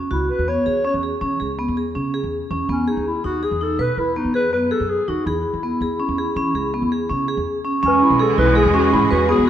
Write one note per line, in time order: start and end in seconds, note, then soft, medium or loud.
0.11 0.28 C#2 medium
0.11 0.32 E4 medium
0.11 0.40 F#4 medium
0.30 0.50 B4 medium
0.39 0.56 E2 medium
0.48 0.62 B3 medium
0.48 0.85 C#5 medium
0.66 0.84 E2 medium
0.66 0.81 G#4 medium
0.85 0.99 C#4 medium
0.85 0.95 C#5 medium
0.94 1.12 E2 medium
1.03 1.18 G#4 medium
1.21 1.39 E3 medium
1.21 1.36 C#4 medium
1.40 1.66 C#2 medium
1.40 1.54 G#4 soft
1.59 1.73 B3 medium
1.68 1.94 E2 medium
1.77 1.91 G#4 medium
1.95 2.22 C#3 medium
1.95 2.10 C#4 medium
2.14 2.42 G#4 medium
2.23 2.41 E2 medium
2.51 2.68 E2 medium
2.51 2.65 C#4 medium
2.69 2.86 E2 medium
2.69 2.83 B3 medium
2.69 2.91 C#4 medium
2.88 3.07 D#4 medium
2.88 3.16 G#4 medium
2.97 3.14 D#2 medium
3.07 3.24 E4 medium
3.24 3.50 D#2 medium
3.24 3.39 D#4 medium
3.24 3.46 F#4 medium
3.43 3.57 G#4 medium
3.43 3.65 G#4 medium
3.51 3.77 E2 medium
3.61 3.75 D#4 medium
3.61 3.82 A4 medium
3.79 3.88 B2 medium
3.79 4.08 B4 medium
3.79 4.01 B4 medium
3.97 4.23 E2 medium
3.97 4.19 E4 medium
4.16 4.30 B3 medium
4.16 4.34 D#4 medium
4.25 4.53 E2 medium
4.34 4.48 G#4 medium
4.34 4.52 B4 medium
4.53 4.70 F#2 medium
4.53 4.67 B3 medium
4.53 4.70 B4 medium
4.71 5.00 G#4 medium
4.71 4.92 A4 medium
4.80 4.98 F#2 medium
4.90 5.10 G#4 medium
5.08 5.17 E2 medium
5.08 5.22 D#4 medium
5.08 5.28 F#4 medium
5.26 5.44 E2 medium
5.26 7.47 E4 medium
5.26 5.55 G#4 medium
5.54 5.71 E2 medium
5.63 5.77 B3 medium
5.81 5.98 E2 medium
5.81 5.96 G#4 medium
6.00 6.14 C#4 medium
6.08 6.26 E2 medium
6.18 6.33 G#4 medium
6.36 6.54 E3 medium
6.36 6.51 C#4 medium
6.55 6.81 C#2 medium
6.55 6.69 G#4 medium
6.74 6.88 B3 medium
6.82 7.08 E2 medium
6.92 7.06 G#4 medium
7.10 7.36 C#3 medium
7.10 7.24 C#4 medium
7.28 7.57 G#4 medium
7.37 7.46 E2 medium
7.65 7.79 C#4 medium
7.83 8.00 E2 medium
7.83 9.50 E3 medium
7.83 9.50 G#3 medium
7.83 8.11 C#4 medium
7.83 9.50 C#4 medium
7.83 8.05 C#4 medium
7.83 9.50 F#4 medium
7.83 9.50 G#4 medium
7.88 9.13 B4 medium
8.03 8.23 E4 medium
8.10 8.28 B1 medium
8.19 8.34 G#4 medium
8.19 8.38 A4 medium
8.38 8.64 B1 medium
8.38 8.52 E4 medium
8.38 8.58 B4 medium
8.55 8.70 G#4 medium
8.55 8.76 G#4 medium
8.66 8.91 E2 medium
8.74 9.02 C#4 medium
8.74 8.92 F#4 medium
8.79 9.50 G#4 soft
8.93 9.02 G#2 medium
8.93 9.13 E4 medium
9.11 9.37 E2 medium
9.11 9.28 F#4 medium
9.11 9.25 B4 medium
9.29 9.43 B3 medium
9.29 9.50 F#4 soft
9.29 9.46 G#4 medium
9.38 9.50 E2 medium